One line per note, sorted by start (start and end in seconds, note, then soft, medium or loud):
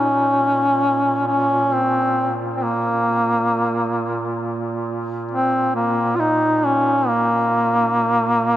0.00 8.57 A#2 soft
0.00 1.25 C#4 medium
1.27 1.75 C#4 medium
1.74 2.38 C4 medium
2.56 2.64 C4 soft
2.63 4.41 A#3 medium
5.31 5.73 C4 medium
5.75 6.17 A#3 medium
6.16 6.21 F4 medium
6.20 6.67 D#4 medium
6.65 7.09 C#4 medium
7.08 8.57 A#3 medium